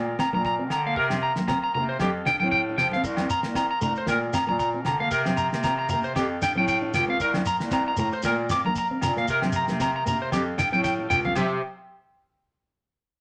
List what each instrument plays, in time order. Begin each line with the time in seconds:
Already playing: bass clarinet A#2, nylon-string guitar A#3, transistor combo organ A#4 D5 F5
0.19 nylon-string guitar C4, clean electric guitar A#5, snare, low agogo
0.33 bass clarinet A#2, nylon-string guitar A#3, clean electric guitar A#5, high conga
0.45 clean electric guitar A#5, kick, snare
0.59 nylon-string guitar C4
0.70 bass clarinet D3, clean electric guitar A#5, snare, low agogo
0.86 nylon-string guitar A#3, clean electric guitar F5
0.96 bass clarinet C3, clean electric guitar A#4, transistor combo organ C5 F5, kick
1.10 nylon-string guitar C4, snare, high conga, low agogo
1.23 clean electric guitar A#5
1.36 nylon-string guitar A#3, snare, high conga
1.48 nylon-string guitar C4, clean electric guitar A#5, kick, snare, low conga, low agogo
1.64 clean electric guitar A#5
1.75 bass clarinet C3, nylon-string guitar A#3, clean electric guitar A#5, low conga
1.89 clean electric guitar C5
1.99 bass clarinet F2, nylon-string guitar C4, transistor combo organ G4 A4, clean electric guitar G4, kick, snare, high conga, low agogo
2.25 nylon-string guitar D4, clean electric guitar G5, snare, low conga, low agogo
2.39 bass clarinet A2, nylon-string guitar C4, clean electric guitar G5, high conga
2.51 clean electric guitar G5, kick
2.69 nylon-string guitar D4
2.77 bass clarinet F3, clean electric guitar G5, snare, low conga, low agogo
2.91 clean electric guitar F5, snare, high conga
2.96 nylon-string guitar C4
3.03 bass clarinet C2, transistor combo organ A#4 C5 F5, muted clean electric guitar stroke, kick, shekere
3.17 nylon-string guitar C4, snare, high conga, low agogo
3.30 clean electric guitar A#5, shekere
3.43 bass clarinet C2, nylon-string guitar A#3, snare
3.55 nylon-string guitar C4, clean electric guitar A#5, kick, snare, low agogo, shekere
3.71 clean electric guitar A#5
3.81 bass clarinet C2, nylon-string guitar A3, clean electric guitar A#5, low conga, shekere
3.96 clean electric guitar C5, shekere
4.07 bass clarinet A#2, nylon-string guitar A#3, clean electric guitar A#4, transistor combo organ D5, kick, snare, low agogo, shekere
4.33 nylon-string guitar C4, clean electric guitar A#5, snare, low agogo, shekere
4.47 bass clarinet A#2, nylon-string guitar A#3, clean electric guitar A#5, high conga
4.59 clean electric guitar A#5, kick, shekere
4.74 nylon-string guitar C4
4.85 bass clarinet D3, clean electric guitar A#5, snare, low conga, low agogo
5.00 nylon-string guitar A#3, clean electric guitar F5
5.11 bass clarinet C3, clean electric guitar A#4, transistor combo organ C5, kick, shekere
5.25 nylon-string guitar C4, snare, high conga, low agogo
5.37 clean electric guitar A#5, shekere
5.52 bass clarinet C3, nylon-string guitar A#3, snare
5.63 nylon-string guitar C4, clean electric guitar A#5, kick, snare, low agogo, shekere
5.79 clean electric guitar A#5
5.89 bass clarinet C3, clean electric guitar A#5, low conga, shekere
5.93 nylon-string guitar A#3
6.04 clean electric guitar C5, shekere
6.16 bass clarinet F2, nylon-string guitar C4, clean electric guitar G4, transistor combo organ G4 A4 F5, kick, snare, low agogo, shekere
6.42 nylon-string guitar D4, clean electric guitar G5, snare, low agogo, shekere
6.55 bass clarinet A2, nylon-string guitar C4, clean electric guitar G5, high conga
6.68 clean electric guitar G5, kick, shekere
6.82 nylon-string guitar D4
6.94 bass clarinet C#2, clean electric guitar G5, snare, low conga, low agogo, shekere
7.08 nylon-string guitar C4, clean electric guitar F5
7.19 bass clarinet C2, transistor combo organ A#4 C5, clean electric guitar A#4, kick, shekere
7.34 nylon-string guitar C4, snare, high conga, low agogo
7.46 clean electric guitar A#5, shekere
7.60 bass clarinet C2, nylon-string guitar A#3, snare
7.71 nylon-string guitar C4, clean electric guitar A#5, kick, snare, low agogo, shekere
7.88 clean electric guitar A#5
7.97 bass clarinet A2, nylon-string guitar A3, clean electric guitar A#5, low conga, shekere
8.12 clean electric guitar C5, shekere
8.22 bass clarinet A#2, nylon-string guitar A#3, transistor combo organ A#4 D5 F5, clean electric guitar A#4, kick, snare, low agogo, shekere
8.49 nylon-string guitar C4, clean electric guitar D6, snare, low agogo, shekere
8.65 nylon-string guitar A#3, clean electric guitar A#5, high conga
8.75 clean electric guitar A#5, kick, snare, shekere
8.91 nylon-string guitar C4
9.01 bass clarinet A#2, clean electric guitar A#5, snare, low conga, low agogo, shekere
9.17 nylon-string guitar A#3, clean electric guitar F5, snare
9.28 bass clarinet C3, clean electric guitar A#4, transistor combo organ C5 F5, kick, shekere
9.42 nylon-string guitar C4, snare, high conga, low agogo
9.52 clean electric guitar A#5, shekere
9.68 bass clarinet C3, nylon-string guitar A#3, snare, high conga, shekere
9.80 nylon-string guitar C4, clean electric guitar A#5, kick, snare, low conga, low agogo, shekere
9.96 clean electric guitar A#5
10.06 bass clarinet C3, nylon-string guitar A#3, clean electric guitar A#5, low conga, shekere
10.22 clean electric guitar C5
10.31 bass clarinet F2, nylon-string guitar C4, transistor combo organ G4 A4 F5, clean electric guitar G4, kick, snare, high conga, low agogo, shekere
10.58 nylon-string guitar D4, clean electric guitar G5, snare, low conga, low agogo, shekere
10.71 bass clarinet A2, nylon-string guitar C4, clean electric guitar G5, high conga, shekere
10.84 clean electric guitar G5, kick, snare, shekere
10.99 muted nylon-string guitar stroke
11.09 bass clarinet C#2, clean electric guitar G5, mid tom, low conga, low agogo, shekere
11.25 nylon-string guitar C4, clean electric guitar F5, floor tom, high conga
11.35 bass clarinet C3, nylon-string guitar C4, clean electric guitar G4 C5 E5, transistor combo organ G4 C5 E5, kick, crash, high conga, low agogo, shekere